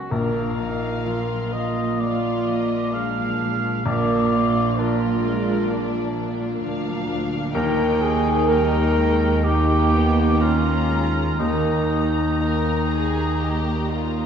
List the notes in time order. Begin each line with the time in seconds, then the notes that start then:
Already playing: C#3 G#3 C#4 F#4
0.11 A#1 A#2 A#3 D4 F4 A#4 F5
0.36 F4
0.59 F3 D#4
1.06 F3 A#3 F4
1.30 F#3
1.53 F3 D#5
2.00 F3 F4 D5 F5
2.25 F4
2.47 F3 D#5
2.72 F4
2.93 F3 G#3 D4 F5
3.18 F#3
3.41 F3
3.64 F4
3.85 A#1 A#2 A#3 D4 F4 D5 F5
4.10 D4
4.34 F3 F4
4.57 F4
4.79 F3 A#3 D4 F4 A#4 D5
5.03 F#3
5.25 F3 G#3
5.49 F4
5.71 A#3 D4
5.95 F4
6.17 F3 D4
6.40 F4
6.63 D2 F3 F5
6.86 F#3
7.09 F3
7.32 F4
7.55 D#2 D#3 A#3 D#4 A#4 G5
7.80 G5
8.02 G#4
8.49 G3 A#3 A#4 G5
8.97 G#3
9.44 A#3 D#4 G4 G5
9.93 B3
10.41 A#3 C#4 F4 A#5
10.66 B3
10.90 G#3
11.39 D#2 D#3 A#3 D#4 A#5
11.66 D#4
12.40 D#4 A#4
12.91 G#4
13.16 G4
13.40 G4
13.66 G4
13.90 F4
14.16 G4